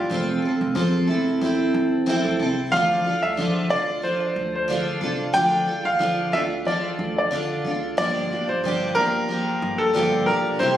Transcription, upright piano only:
0, 0, Header, 1, 2, 480
1, 0, Start_track
1, 0, Key_signature, -1, "minor"
1, 0, Tempo, 656455
1, 74, Time_signature, 4, 2, 24, 8
1, 7875, End_track
2, 0, Start_track
2, 0, Title_t, "Upright piano"
2, 0, Program_c, 0, 0
2, 0, Note_on_c, 0, 65, 62
2, 767, Note_off_c, 0, 65, 0
2, 1987, Note_on_c, 0, 77, 90
2, 2358, Note_on_c, 0, 76, 72
2, 2373, Note_off_c, 0, 77, 0
2, 2685, Note_off_c, 0, 76, 0
2, 2708, Note_on_c, 0, 74, 85
2, 2950, Note_on_c, 0, 72, 68
2, 2957, Note_off_c, 0, 74, 0
2, 3319, Note_off_c, 0, 72, 0
2, 3330, Note_on_c, 0, 72, 59
2, 3550, Note_off_c, 0, 72, 0
2, 3902, Note_on_c, 0, 79, 106
2, 4279, Note_on_c, 0, 77, 77
2, 4290, Note_off_c, 0, 79, 0
2, 4630, Note_on_c, 0, 76, 85
2, 4640, Note_off_c, 0, 77, 0
2, 4684, Note_off_c, 0, 76, 0
2, 4874, Note_on_c, 0, 74, 60
2, 5242, Note_off_c, 0, 74, 0
2, 5253, Note_on_c, 0, 74, 63
2, 5472, Note_off_c, 0, 74, 0
2, 5834, Note_on_c, 0, 74, 104
2, 6205, Note_on_c, 0, 72, 76
2, 6217, Note_off_c, 0, 74, 0
2, 6530, Note_off_c, 0, 72, 0
2, 6543, Note_on_c, 0, 70, 105
2, 7153, Note_on_c, 0, 69, 83
2, 7180, Note_off_c, 0, 70, 0
2, 7504, Note_on_c, 0, 70, 64
2, 7519, Note_off_c, 0, 69, 0
2, 7745, Note_on_c, 0, 72, 75
2, 7758, Note_off_c, 0, 70, 0
2, 7875, Note_off_c, 0, 72, 0
2, 7875, End_track
0, 0, End_of_file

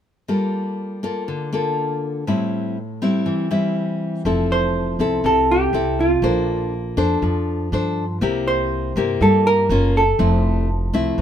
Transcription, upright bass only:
0, 0, Header, 1, 2, 480
1, 0, Start_track
1, 0, Key_signature, -1, "major"
1, 0, Tempo, 495458
1, 271, Time_signature, 4, 2, 24, 8
1, 10866, End_track
2, 0, Start_track
2, 0, Title_t, "Upright bass"
2, 0, Program_c, 0, 32
2, 4117, Note_on_c, 0, 29, 91
2, 4799, Note_off_c, 0, 29, 0
2, 4833, Note_on_c, 0, 36, 80
2, 5059, Note_off_c, 0, 36, 0
2, 5074, Note_on_c, 0, 36, 83
2, 5522, Note_off_c, 0, 36, 0
2, 5549, Note_on_c, 0, 36, 88
2, 6000, Note_off_c, 0, 36, 0
2, 6027, Note_on_c, 0, 34, 96
2, 6713, Note_off_c, 0, 34, 0
2, 6753, Note_on_c, 0, 41, 91
2, 6978, Note_off_c, 0, 41, 0
2, 6996, Note_on_c, 0, 41, 87
2, 7443, Note_off_c, 0, 41, 0
2, 7480, Note_on_c, 0, 43, 85
2, 7924, Note_off_c, 0, 43, 0
2, 7956, Note_on_c, 0, 36, 90
2, 8636, Note_off_c, 0, 36, 0
2, 8677, Note_on_c, 0, 43, 90
2, 8899, Note_off_c, 0, 43, 0
2, 8919, Note_on_c, 0, 43, 86
2, 9362, Note_off_c, 0, 43, 0
2, 9390, Note_on_c, 0, 30, 88
2, 9837, Note_off_c, 0, 30, 0
2, 9871, Note_on_c, 0, 29, 91
2, 10551, Note_off_c, 0, 29, 0
2, 10596, Note_on_c, 0, 36, 89
2, 10816, Note_off_c, 0, 36, 0
2, 10830, Note_on_c, 0, 36, 91
2, 10866, Note_off_c, 0, 36, 0
2, 10866, End_track
0, 0, End_of_file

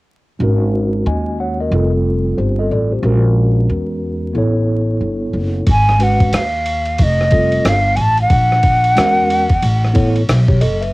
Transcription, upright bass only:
0, 0, Header, 1, 2, 480
1, 0, Start_track
1, 0, Tempo, 659341
1, 288, Time_signature, 4, 2, 24, 8
1, 7959, End_track
2, 0, Start_track
2, 0, Title_t, "Upright bass"
2, 0, Program_c, 0, 32
2, 291, Note_on_c, 0, 32, 90
2, 745, Note_off_c, 0, 32, 0
2, 773, Note_on_c, 0, 39, 93
2, 1226, Note_off_c, 0, 39, 0
2, 1248, Note_on_c, 0, 29, 91
2, 1704, Note_off_c, 0, 29, 0
2, 1734, Note_on_c, 0, 31, 75
2, 1959, Note_off_c, 0, 31, 0
2, 1976, Note_on_c, 0, 33, 73
2, 2200, Note_off_c, 0, 33, 0
2, 2205, Note_on_c, 0, 34, 97
2, 2662, Note_off_c, 0, 34, 0
2, 2690, Note_on_c, 0, 40, 83
2, 3145, Note_off_c, 0, 40, 0
2, 3166, Note_on_c, 0, 33, 76
2, 3623, Note_off_c, 0, 33, 0
2, 3645, Note_on_c, 0, 31, 65
2, 3874, Note_off_c, 0, 31, 0
2, 3882, Note_on_c, 0, 30, 72
2, 4112, Note_off_c, 0, 30, 0
2, 4128, Note_on_c, 0, 32, 82
2, 4584, Note_off_c, 0, 32, 0
2, 4604, Note_on_c, 0, 39, 82
2, 5062, Note_off_c, 0, 39, 0
2, 5090, Note_on_c, 0, 29, 88
2, 5545, Note_off_c, 0, 29, 0
2, 5564, Note_on_c, 0, 31, 81
2, 5794, Note_off_c, 0, 31, 0
2, 5804, Note_on_c, 0, 33, 80
2, 6033, Note_off_c, 0, 33, 0
2, 6048, Note_on_c, 0, 34, 85
2, 6504, Note_off_c, 0, 34, 0
2, 6531, Note_on_c, 0, 40, 76
2, 6985, Note_off_c, 0, 40, 0
2, 7007, Note_on_c, 0, 33, 85
2, 7463, Note_off_c, 0, 33, 0
2, 7490, Note_on_c, 0, 35, 84
2, 7717, Note_off_c, 0, 35, 0
2, 7729, Note_on_c, 0, 30, 67
2, 7956, Note_off_c, 0, 30, 0
2, 7959, End_track
0, 0, End_of_file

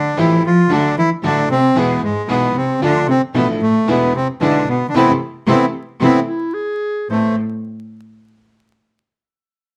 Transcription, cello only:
0, 0, Header, 1, 2, 480
1, 0, Start_track
1, 0, Key_signature, 0, "minor"
1, 0, Tempo, 529568
1, 635, Time_signature, 4, 2, 24, 8
1, 3995, Tempo, 536673
1, 8789, End_track
2, 0, Start_track
2, 0, Title_t, "Cello"
2, 0, Program_c, 0, 42
2, 0, Note_on_c, 0, 50, 83
2, 141, Note_off_c, 0, 50, 0
2, 159, Note_on_c, 0, 52, 93
2, 381, Note_off_c, 0, 52, 0
2, 401, Note_on_c, 0, 53, 86
2, 621, Note_off_c, 0, 53, 0
2, 638, Note_on_c, 0, 50, 100
2, 860, Note_off_c, 0, 50, 0
2, 879, Note_on_c, 0, 52, 81
2, 986, Note_off_c, 0, 52, 0
2, 1117, Note_on_c, 0, 50, 85
2, 1339, Note_off_c, 0, 50, 0
2, 1363, Note_on_c, 0, 48, 87
2, 1582, Note_off_c, 0, 48, 0
2, 1604, Note_on_c, 0, 47, 81
2, 1822, Note_off_c, 0, 47, 0
2, 1843, Note_on_c, 0, 44, 76
2, 2062, Note_off_c, 0, 44, 0
2, 2081, Note_on_c, 0, 47, 83
2, 2301, Note_off_c, 0, 47, 0
2, 2307, Note_on_c, 0, 48, 74
2, 2533, Note_off_c, 0, 48, 0
2, 2550, Note_on_c, 0, 50, 104
2, 2774, Note_off_c, 0, 50, 0
2, 2786, Note_on_c, 0, 48, 79
2, 2896, Note_off_c, 0, 48, 0
2, 3035, Note_on_c, 0, 47, 89
2, 3142, Note_off_c, 0, 47, 0
2, 3264, Note_on_c, 0, 45, 85
2, 3491, Note_off_c, 0, 45, 0
2, 3511, Note_on_c, 0, 47, 74
2, 3735, Note_off_c, 0, 47, 0
2, 3757, Note_on_c, 0, 48, 76
2, 3864, Note_off_c, 0, 48, 0
2, 3996, Note_on_c, 0, 50, 93
2, 4217, Note_off_c, 0, 50, 0
2, 4239, Note_on_c, 0, 47, 73
2, 4403, Note_off_c, 0, 47, 0
2, 4417, Note_on_c, 0, 50, 54
2, 4463, Note_off_c, 0, 50, 0
2, 4469, Note_on_c, 0, 48, 110
2, 4623, Note_off_c, 0, 48, 0
2, 4942, Note_on_c, 0, 48, 97
2, 5098, Note_off_c, 0, 48, 0
2, 5421, Note_on_c, 0, 48, 89
2, 5579, Note_off_c, 0, 48, 0
2, 6401, Note_on_c, 0, 45, 81
2, 6625, Note_off_c, 0, 45, 0
2, 8789, End_track
0, 0, End_of_file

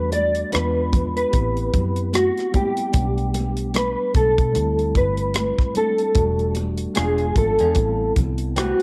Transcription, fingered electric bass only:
0, 0, Header, 1, 2, 480
1, 0, Start_track
1, 0, Key_signature, 1, "minor"
1, 0, Tempo, 803213
1, 1760, Time_signature, 4, 2, 24, 8
1, 5274, End_track
2, 0, Start_track
2, 0, Title_t, "Fingered electric bass"
2, 0, Program_c, 0, 33
2, 0, Note_on_c, 0, 40, 96
2, 254, Note_off_c, 0, 40, 0
2, 326, Note_on_c, 0, 40, 80
2, 738, Note_off_c, 0, 40, 0
2, 800, Note_on_c, 0, 33, 90
2, 1007, Note_off_c, 0, 33, 0
2, 1038, Note_on_c, 0, 42, 78
2, 1367, Note_off_c, 0, 42, 0
2, 1759, Note_on_c, 0, 35, 91
2, 2355, Note_off_c, 0, 35, 0
2, 2482, Note_on_c, 0, 35, 83
2, 2601, Note_off_c, 0, 35, 0
2, 2620, Note_on_c, 0, 47, 81
2, 2707, Note_off_c, 0, 47, 0
2, 2723, Note_on_c, 0, 38, 97
2, 2964, Note_on_c, 0, 31, 70
2, 2973, Note_off_c, 0, 38, 0
2, 3290, Note_off_c, 0, 31, 0
2, 3681, Note_on_c, 0, 28, 95
2, 4095, Note_off_c, 0, 28, 0
2, 4168, Note_on_c, 0, 28, 79
2, 4372, Note_off_c, 0, 28, 0
2, 4400, Note_on_c, 0, 32, 81
2, 4520, Note_off_c, 0, 32, 0
2, 4548, Note_on_c, 0, 40, 82
2, 4631, Note_off_c, 0, 40, 0
2, 4638, Note_on_c, 0, 33, 94
2, 4846, Note_off_c, 0, 33, 0
2, 4883, Note_on_c, 0, 36, 83
2, 5209, Note_off_c, 0, 36, 0
2, 5274, End_track
0, 0, End_of_file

